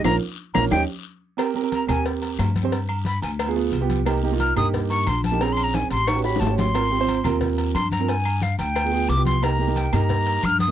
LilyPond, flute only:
\new Staff \with { instrumentName = "Flute" } { \time 4/4 \key ees \mixolydian \tempo 4 = 179 bes''8 r4 bes''8 g''8 r4. | r4 bes''8 aes''8 r2 | r4 b''8 aes''8 r2 | r4 f'''8 ees'''8 r8 des'''8 c'''8 a''8 |
\tuplet 3/2 { bes''8 c'''8 bes''8 } aes''8 c'''8 cis'''8 b''8 a''8 c'''8~ | c'''2 r4 c'''8 bes''8 | aes''4 f''8 g''4. d'''8 c'''8 | bes''4 g''8 bes''4. f'''8 ees'''8 | }